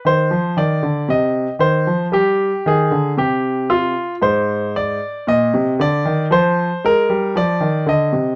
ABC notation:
X:1
M:4/4
L:1/16
Q:1/4=58
K:Cm
V:1 name="Grand piano"
c2 d2 e2 c2 G2 A2 G2 F2 | [K:Ablyd] c2 d2 e2 d2 c2 B2 d2 e2 |]
V:2 name="Grand piano" clef=bass
E, F, E, D, C,2 E, F, G,2 E, D, C,4 | [K:Ablyd] A,,4 B,, C, D, E, F,2 A, G, F, E, D, C, |]